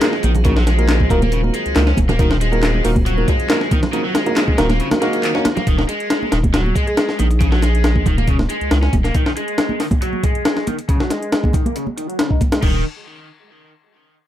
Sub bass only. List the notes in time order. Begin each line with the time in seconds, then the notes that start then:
0.24 A#1
1.10 D#1
1.66 C#2
1.76 C#2
1.98 D#1
2.85 D#1
4.59 D#1
5.67 D#1
6.32 D#1
7.20 A#1
8.06 D#1
8.61 C#2
8.71 C#2
8.93 D#1
12.63 D#1